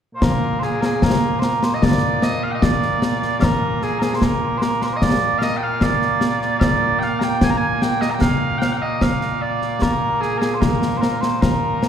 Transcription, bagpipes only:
0.15 A#2 A#3 C5
0.23 A#4
0.59 G#4 C5
0.81 G#4 A#4
1.04 A#4
1.40 C5
1.44 A#4
1.64 C5
1.74 D#5
1.83 D5
2.23 D#5
2.43 F5
2.51 D#5 G5
2.63 D5
3.41 A#4 F5
3.83 G#4
3.99 G#4 A#4
4.15 C5
4.23 A#4
4.58 C5
4.62 A#4
4.82 A#4 C5
4.93 C5 D#5
5.03 D5
5.38 F5
5.43 D#5
5.57 G5
5.63 F5
5.83 D5
6.60 D5 F5
6.99 G5
7.03 F5
7.19 A#5
7.23 G5
7.43 G#5
7.50 A#5
7.57 G#5
7.82 G5
8.01 D#5
8.10 A#5
8.14 G5
8.21 F5
8.58 F5 G5
8.72 G5
8.77 F5
8.82 D#5
9.02 F5
9.42 D5
9.82 A#4
10.21 G#4
10.38 G#4 A#4
10.54 C5
10.61 A#4
10.97 C5
11.01 A#4
11.21 C5
11.42 A#4

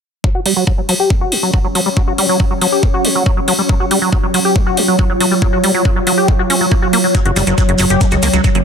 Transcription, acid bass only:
0.24 F#3
0.35 F#4
0.46 G3
0.56 F#3
0.67 F#3
0.78 F#3
0.89 F#3
1.00 G4
1.10 G3
1.21 F#4
1.32 F#3
1.43 F#3
1.54 F#3
1.64 F#3
1.75 F#3
1.86 G3
1.97 F#3
2.07 F#4
2.18 G3
2.29 F#3
2.40 F#3
2.51 F#3
2.61 F#3
2.72 G4
2.83 G3
2.94 F#4
3.05 F#3
3.15 F#3
3.26 F#3
3.37 F#3
3.48 F#3
3.59 G3
3.69 F#3
3.80 F#4
3.91 G3
4.02 F#3
4.12 F#3
4.23 F#3
4.34 F#3
4.45 G4
4.56 G3
4.66 F#4
4.77 F#3
4.88 F#3
4.99 F#3
5.10 F#3
5.20 F#3
5.31 G3
5.42 F#3
5.53 F#4
5.64 G3
5.74 F#3
5.85 F#3
5.96 F#3
6.07 F#3
6.18 G4
6.28 G3
6.39 F#4
6.50 C#4
6.61 F#3
6.71 A#3
6.82 F#4
6.93 A#3
7.04 F#3
7.15 F#3
7.25 F#4
7.36 G3
7.47 F#3
7.58 F#3
7.69 F#3
7.79 F#3
7.90 G4
8.01 G3
8.12 F#4
8.23 A#3
8.33 F#3
8.44 F#3
8.55 F#3

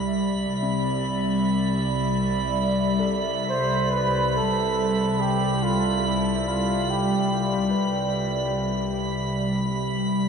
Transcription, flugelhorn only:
3.50 C5
3.90 B4
4.37 A4
5.20 G4
5.63 F4
6.06 E4
6.48 F4
6.90 G4

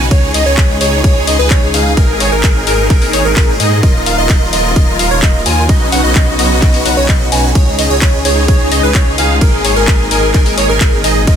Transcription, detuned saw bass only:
0.11 C#2
0.34 C#2
0.46 C#2
0.58 C#2
0.81 C#2
1.04 C#2
1.27 C#2
1.39 C#2
1.51 C#2
1.74 C#2
1.97 G#1
2.20 G#1
2.32 G#1
2.44 G#1
2.67 G#1
2.90 G#1
3.14 G#1
3.25 G#1
3.37 G#1
3.60 G#2
3.83 D#1
4.06 D#1
4.18 D#1
4.30 D#1
4.53 D#1
4.76 D#1
4.99 D#1
5.11 D#1
5.23 D#1
5.46 D#2
5.69 B1
5.93 B1
6.04 B1
6.16 B1
6.39 B1
6.62 B1
6.86 B1
6.97 B1
7.09 B1
7.32 B1
7.55 C#2
7.79 C#2
7.90 C#2
8.02 C#2
8.25 C#2
8.48 C#2
8.72 C#2
8.83 C#2
8.95 C#2
9.18 C#2
9.41 G#1
9.65 G#1
9.76 G#1
9.88 G#1
10.11 G#1
10.34 G#1
10.58 G#1
10.69 G#1
10.81 G#1
11.04 G#1
11.27 D#1

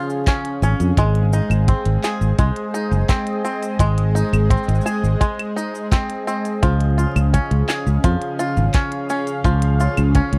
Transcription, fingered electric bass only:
0.62 G#1
0.80 F2
0.97 G#1
1.50 G#1
1.86 G#1
2.21 G#1
2.38 C2
2.91 F#1
3.79 G#1
4.33 G#1
4.68 G#1
5.03 G#1
6.63 C#2
7.16 C#2
7.51 C#2
7.86 C#2
8.04 F2
8.57 G#1
9.44 C#2
9.98 C#2
10.33 C#2

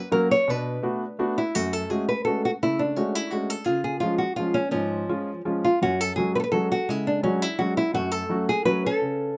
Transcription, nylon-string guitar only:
Already playing: B4
0.12 A#4
0.31 C#5
0.50 D4 B4
1.38 E4
1.55 A3 F#4
1.73 A4
1.90 G#4
2.09 B4
2.25 A4
2.45 F#4
2.63 A3 E4
2.79 D4
2.96 C#4
3.15 E4
3.30 F#4
3.50 A4
3.64 F4 G#4
3.84 G#4
4.00 F4
4.18 F#4
4.36 F4
4.54 C#4
4.71 F3 C#4
5.65 F4
5.83 C#4 F#4
6.01 A4
6.16 G#4
6.35 B4
6.40 A4 B4
6.52 A4
6.72 F#4
6.89 G#3 E4
7.07 D4
7.24 C#4
7.42 E4
7.59 F#4
7.77 E4
7.94 A3 F#4
8.11 A4
8.49 G#4
8.65 B4
8.86 C#4 A4

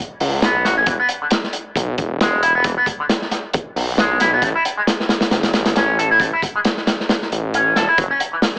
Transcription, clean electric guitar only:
0.43 B3
0.65 F#4
0.78 C#4
0.87 E3
1.00 B3
1.22 D3
2.21 G#3
2.43 E4
2.55 B3
2.65 E3
2.78 B3
3.00 D3
3.99 G#3
4.21 E4
4.33 B3
4.43 A3
4.55 E4
4.77 G#3
5.76 C#4
5.99 A4
6.11 E4
6.21 A3
6.33 E4
6.56 G#3
7.54 C#4
7.76 A4
7.89 E4
7.99 F#3
8.11 C#4
8.33 E3

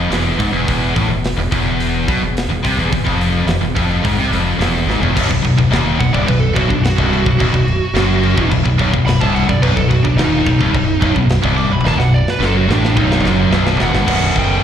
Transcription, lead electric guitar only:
6.00 F#5
6.14 D5
6.26 B4
6.40 A4
6.54 F#4
6.69 D4
6.83 F#4
9.06 B5
9.21 A5
9.35 F#5
9.49 D5
9.62 B4
9.76 A4
9.89 F#4
10.03 D4
10.18 D#4
11.57 D6
11.72 B5
11.87 A5
11.99 F#5
12.14 D5
12.30 B4
12.45 A4
12.57 F#4
12.72 D4
12.98 D#4
13.83 F#5
14.39 G5

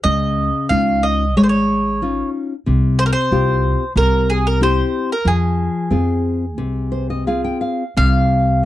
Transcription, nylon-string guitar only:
0.04 C#3
0.70 C#4 D#4 F4
1.37 G#3
2.02 C#4 D#4 F4
2.66 C3
3.32 C4 F4 G4
3.96 C3
4.61 C4 E4 G4
5.25 F3
5.90 C4 F4 G#4
6.58 C3
6.92 C5
7.10 D#5
7.27 C4 F4 G#4 F5
7.44 G5
7.61 F5
7.97 C3

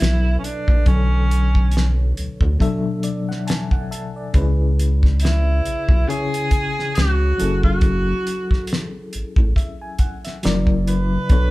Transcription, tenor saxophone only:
Already playing: E4
0.38 C#4
0.44 D4
0.88 C#4
5.22 E4
6.08 G#4
6.95 F#4
7.64 F#4
10.88 B4

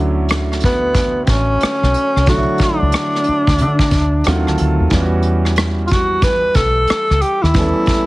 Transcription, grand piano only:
Already playing: D3 F#3 A3 C#4 E4
2.26 D3 F#3 A3 C#5
2.31 D4
2.37 E4
4.26 D#3 F#3 A3 C4 F4 F#5
4.47 A5
4.60 A5
4.90 E3 G3 B3 C#4
4.95 F4
5.02 F#4
7.54 E3 G3 B3
7.58 C#4 A4

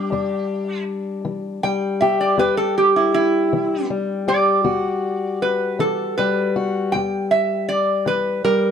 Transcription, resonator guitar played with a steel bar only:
Already playing: G4
1.63 G5
2.01 E5
2.21 D5
2.39 B4
2.57 A4
2.78 G4
2.96 E4
3.14 E4
4.28 D5
5.42 B4
5.80 A4
6.18 B4
6.92 G5
7.31 E5
7.69 D5
8.07 B4
8.45 A#4

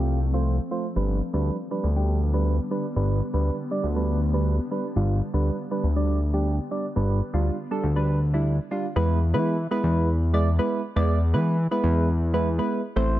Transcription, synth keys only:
Already playing: A3 F4 G4
0.33 A3 F4 C5
0.71 A3 F4 C5
0.96 G3 D4 B4
1.33 G3 D4 B4
1.71 G3 D4 B4
1.96 G3 D4 G4
2.33 G3 D4 B4
2.71 G3 D4 B4
2.96 G3 D4 B4
3.33 G3 D4 B4
3.71 G3 D4 D5
3.96 G3 D4 B4
4.33 G3 D4 B4
4.71 G3 D4 B4
4.96 G3 D4 F4
5.33 G3 D4 B4
5.71 G3 D4 B4
5.96 G3 D4 D5
6.33 G3 D4 G4
6.71 G3 D4 D5
6.96 G3 D4 B4
7.33 G3 D4 F4
7.71 G3 D4 A4
7.96 G3 D4 B4
8.33 G3 D4 E4
8.71 G3 D4 F4
8.96 G#3 B3 E4 B4
9.33 G#3 B3 E4 B4
9.71 G#3 B3 E4 B4
10.33 G#3 B3 E4 D5
10.58 G#3 B3 E4 B4
10.96 G#3 B3 E4 D5
11.33 G#3 B3 E4 B4
11.71 G#3 B3 E4 B4
12.33 G#3 B3 E4 B4
12.58 G#3 B3 E4 B4
12.96 A3 C4 E4 C5

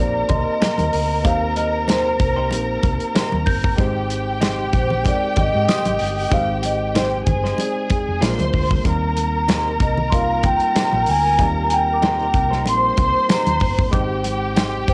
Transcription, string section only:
Already playing: A#4 A#5
3.78 G4 G5
7.27 G#4 G#5
8.22 C5 C6
8.87 A#4 A#5
12.66 C5 C6
13.93 G4 G5

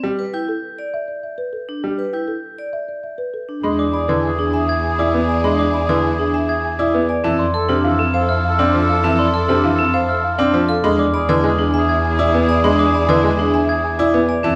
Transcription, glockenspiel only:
0.34 G6
2.14 G6
3.79 D6
4.09 G#6
4.69 G#6
4.99 D6
5.59 D6
5.89 G#6
6.49 G#6
6.79 D6
7.39 C6
7.69 F6
8.29 F6
8.59 D6
9.19 C6
9.49 F6
10.09 F6
10.39 D6
10.99 D6
11.29 G#6
11.89 G#6
12.19 D6
12.79 D6
13.09 G#6
13.69 G#6
13.99 D6

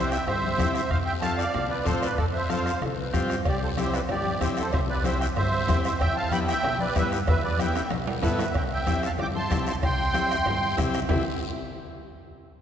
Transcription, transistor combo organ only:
Already playing: C4 E4 G4
0.58 C4 E4 G4
1.21 C4 F4 A4
1.85 C4 F4 C5
2.49 C4 F4 A4
3.13 C4 F4 G4
3.78 C4 E4 G4
4.41 C4 E4 G4
5.03 C4 E4 G4
5.68 C4 E4 G4
6.32 B3 E4 G4
6.95 B3 E4 G4
7.59 B3 E4 G4
8.22 B3 E4 A4
8.86 C4 E4 G4
9.50 C4 E4 G4
10.13 C4 E4 G4
10.77 C4 E4 G4
11.09 C4 E4 G4

